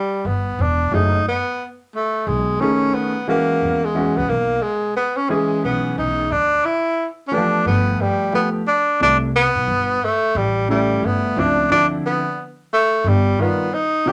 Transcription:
Already playing: tenor saxophone G3
0.25 upright bass G1, tenor saxophone B3
0.59 upright bass E1, tenor saxophone D4
0.91 upright bass F#1, grand piano F#3 A3 E4 G#4, tenor saxophone D#4
1.28 tenor saxophone B3
1.95 tenor saxophone A3
2.27 upright bass B1, tenor saxophone G#3
2.61 grand piano D#3 A3 C#4 G#4, tenor saxophone C#4
2.94 tenor saxophone B3
3.28 grand piano E3 G#3 C#4 F#4, tenor saxophone A#3
3.62 upright bass E2
3.85 tenor saxophone G#3
3.94 grand piano E3 G#3 C#4 F#4
4.17 upright bass C#2, tenor saxophone B3
4.29 upright bass B1, tenor saxophone A#3
4.62 tenor saxophone G#3
4.96 tenor saxophone B3
5.17 tenor saxophone C#4
5.29 grand piano E3 G#3 C#4 G#4, tenor saxophone G#3
5.64 upright bass B1, tenor saxophone B3
5.98 upright bass B1, tenor saxophone D#4
6.31 upright bass D2, tenor saxophone D4
6.65 tenor saxophone E4
7.28 grand piano E3 A3, tenor saxophone C#4
7.32 grand piano B3 G4, tenor saxophone D4
7.37 grand piano F3
7.66 upright bass G1, tenor saxophone B3
8.01 tenor saxophone G3
8.33 grand piano F3 A3 B3 G4, tenor saxophone B3
8.68 tenor saxophone D4
9.00 upright bass C2, grand piano C3 G3 A3 E4, tenor saxophone D4
9.36 tenor saxophone B3
9.55 upright bass B1
9.68 upright bass G1
10.05 tenor saxophone A3
10.35 upright bass A1, tenor saxophone G3
10.69 grand piano C#3 G3 A3 E4, tenor saxophone G3
11.03 upright bass G1, tenor saxophone B3
11.36 upright bass C#2, grand piano F3 C4 D4 E4, tenor saxophone D4
11.70 upright bass D2, grand piano D3 F3 C4 E4, tenor saxophone D4
12.06 tenor saxophone B3
12.74 tenor saxophone A3
13.04 upright bass G1, tenor saxophone G3
13.39 grand piano D#3 G3 B3 F4, tenor saxophone B3
13.74 tenor saxophone D#4
14.06 grand piano C3 E3 B3 D4, tenor saxophone G4

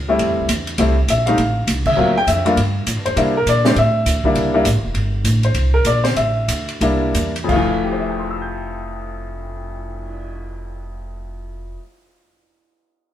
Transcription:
Already playing: upright bass C#2
0.08 upright piano G3 A3 C4 E4
0.19 upright bass F2, kick, ride
0.29 upright bass E2
0.39 upright bass C2
0.49 upright bass E2, kick, hi-hat pedal, ride
0.67 ride
0.78 upright bass C2, upright piano G3 A3 C4 E4, kick, ride
1.08 upright bass A#1, upright piano E5, kick, hi-hat pedal, ride
1.26 upright piano G3 A3 C4 D#4 F5, ride
1.38 upright bass A1, kick, ride
1.67 upright bass C2, kick, hi-hat pedal, ride
1.85 upright piano E5, kick, crash
1.97 upright bass D2, upright piano F#3 A#3 C4 F4
2.18 upright piano G5
2.27 upright bass F2, upright piano E5, kick, hi-hat pedal, ride
2.45 upright piano G2 A3 A#3 D4 F4, ride
2.57 upright bass G2, kick, ride
2.86 upright bass A2, kick, hi-hat pedal, ride
2.96 upright bass G2
3.06 upright bass F2, upright piano C5, ride
3.16 upright bass C3, upright piano G3 A#3 D4 E4, kick, ride
3.37 upright piano A#4
3.46 upright bass A#2, upright piano D5, kick, hi-hat pedal, ride
3.65 upright piano G3 A3 C4 D4 C5, snare
3.76 upright bass A2, upright piano E5, kick, ride
4.06 upright bass D2, kick, hi-hat pedal, ride
4.24 upright piano G3 A#3 D4 E4, muted upright bass stroke, kick
4.35 upright bass C2, kick, ride
4.54 upright piano G3 A#3 D4 E4
4.65 upright bass A1, kick, hi-hat pedal, ride
4.74 upright bass G1
4.84 upright bass E1
4.94 upright bass G1, kick, ride
5.24 upright bass A1, kick, hi-hat pedal, ride
5.43 upright piano C5, ride
5.54 upright bass C2, kick, ride
5.74 upright piano A#4
5.85 upright bass A#1, upright piano D5, kick, hi-hat pedal, ride
6.04 upright piano C5, snare, ride
6.16 upright bass A1, upright piano E5, kick, ride
6.48 upright bass D2, kick, hi-hat pedal, ride
6.68 ride
6.80 upright bass C2, upright piano G3 A#3 D4 E4, kick, ride
7.14 upright bass E2, kick, hi-hat pedal, ride
7.36 ride
7.44 upright piano F2 F3
7.49 upright bass F1, upright piano A3 F5, kick, crash
7.56 upright piano E3
7.71 cymbal swell
7.84 upright piano G4
7.93 upright piano C5
8.00 upright piano E5
8.10 upright piano G5
8.20 upright piano C6
8.31 upright piano E6
8.42 upright piano G6

